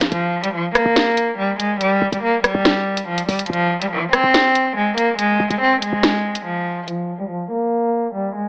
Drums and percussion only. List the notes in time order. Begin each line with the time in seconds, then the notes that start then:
0.01 snare, closed hi-hat
0.12 closed hi-hat
0.44 closed hi-hat
0.75 cross-stick, closed hi-hat
0.96 snare, closed hi-hat
1.17 closed hi-hat
1.60 closed hi-hat
1.81 closed hi-hat
2.13 closed hi-hat
2.44 cross-stick, closed hi-hat
2.65 snare, closed hi-hat
2.97 closed hi-hat
3.18 closed hi-hat
3.29 open hi-hat
3.39 closed hi-hat
3.46 closed hi-hat
3.53 closed hi-hat
3.82 closed hi-hat
4.13 cross-stick, closed hi-hat
4.34 snare, closed hi-hat
4.55 closed hi-hat
4.98 closed hi-hat
5.19 closed hi-hat
5.51 closed hi-hat
5.82 closed hi-hat
6.03 snare, closed hi-hat
6.35 closed hi-hat
6.88 closed hi-hat